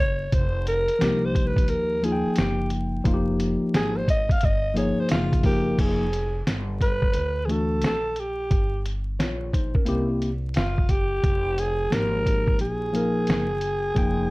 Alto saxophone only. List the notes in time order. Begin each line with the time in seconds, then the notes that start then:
0.00 C#5
0.34 C5
0.68 A#4
1.25 C5
1.47 B4
1.70 A#4
2.04 G#4
2.39 G4
3.75 G#4
3.97 C5
4.10 D#5
4.32 F5
4.45 D#5
4.78 C#5
5.00 C5
5.11 F4
5.45 G4
5.80 G#4
6.82 B4
7.45 G#4
7.52 A4
7.86 A4
8.19 G4
10.56 F4
10.90 G4
11.59 G#4
11.93 A#4
12.61 G#4